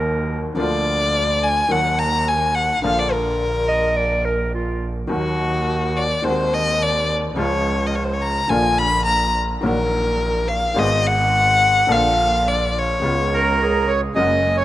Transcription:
Already playing: D#2 D#3 F#3 A#3 F#4 A#4
0.54 D2 D3 F3 A#3
0.59 F4 D5
1.43 G#5
1.69 D#2 D#3 F#3 A#3 F#4 F#5
1.99 A#5
2.28 G#5
2.55 F#5
2.82 A#1 A#2 D3 F3 A#3 F4 F5
2.99 D5
3.13 A#4
3.68 D#5
3.96 D5
4.25 A#4
4.54 F4
5.07 D#2 D#3 F#3 A#3
5.12 F#4
5.97 D5
6.22 D#2 D#3 G#3 C4 F#4 C5
6.54 D#5
6.82 D5
7.36 C#2 C#3 F3 G#3 F4 C#5
7.87 D#5
7.95 C#5
8.04 C5
8.13 C#5
8.22 A#5
8.48 A#1 A#2 D3 F3 A#3 F4 G#5
8.79 B5
9.06 A#5
9.61 A#1 A#2 D#3 F#3 A#3 A#4
9.65 F#4
10.48 F5
10.74 G#1 G#2 D#3 G#3 B3
10.78 G#4 D#5
11.07 F#5
11.87 A#1 A#2 D3 F3 A#3
11.91 F4 F5
12.48 D5
12.79 C#5
13.00 C#2 C#3 G#3 B3
13.04 F4
13.34 A#4
13.62 G#4
13.88 C#5
14.14 F#1 F#2 C#3 F#3 G#3 A#3 D#5
14.18 F#4 G#5
14.57 C#5

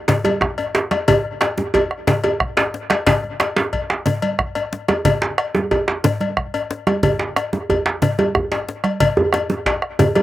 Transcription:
0.08 cowbell, djembe slap, low conga, djembe bass
0.25 cowbell, djembe slap, djembe tone, high conga
0.41 bombo rim, bombo low, djembe tone
0.58 cowbell, djembe tone
0.75 djembe slap
0.91 bombo rim, cowbell, high conga, djembe tone
1.08 bombo low, cowbell, djembe slap, djembe tone, low conga, djembe bass
1.41 bombo rim, cowbell, djembe slap
1.58 djembe slap, high conga, djembe tone
1.74 bombo low, cowbell, djembe tone
1.91 bombo rim
2.07 cowbell, djembe slap, djembe bass, low conga
2.24 cowbell, djembe slap, djembe tone
2.40 bombo rim, bombo low
2.57 cowbell, djembe slap, djembe tone
2.74 djembe slap
2.90 bombo rim, cowbell, djembe slap, high conga
3.07 bombo low, cowbell, djembe slap, low conga, djembe bass
3.24 djembe slap, high conga
3.40 bombo rim, cowbell, djembe slap
3.56 djembe slap, high conga, djembe tone
3.73 bombo low, cowbell
3.90 bombo rim, djembe slap
4.06 bombo rim, cowbell, djembe slap, high conga, low conga, djembe bass
4.22 cowbell, djembe slap, high conga
4.39 bombo rim, bombo low
4.55 bombo rim, cowbell, djembe slap, djembe tone, high conga
4.73 djembe slap, high conga
4.88 bombo rim, cowbell, djembe slap, high conga, djembe tone
5.05 bombo low, cowbell, djembe slap, djembe tone, djembe bass, low conga
5.22 djembe slap
5.38 bombo rim, cowbell
5.55 djembe slap, high conga, djembe tone
5.71 bombo low, cowbell, djembe tone
5.88 bombo rim, djembe slap
6.04 cowbell, djembe slap, low conga, djembe bass
6.21 cowbell, djembe slap, high conga
6.37 bombo rim, bombo low
6.54 cowbell, djembe tone
6.71 djembe slap
6.87 bombo rim, cowbell, high conga, djembe tone
7.03 bombo low, cowbell, djembe slap, low conga, djembe bass
7.19 djembe slap
7.36 bombo rim, cowbell, djembe slap
7.53 djembe slap, high conga, djembe tone
7.69 bombo low, cowbell, djembe bass
7.86 bombo rim, djembe slap
8.02 cowbell, djembe slap, low conga, djembe bass
8.19 cowbell, djembe slap, high conga, djembe tone
8.35 bombo rim, bombo low, djembe bass
8.52 cowbell, djembe slap, djembe tone
8.69 djembe slap
8.84 bombo rim, cowbell, high conga
9.00 bombo low, cowbell, djembe slap, low conga, djembe bass
9.17 djembe bass
9.33 bombo rim, cowbell, djembe slap, djembe tone
9.50 djembe slap, high conga, djembe tone
9.66 bombo low, cowbell, djembe slap
9.82 bombo rim
9.99 cowbell, djembe slap, djembe bass, low conga
10.15 cowbell, djembe slap, high conga, djembe tone

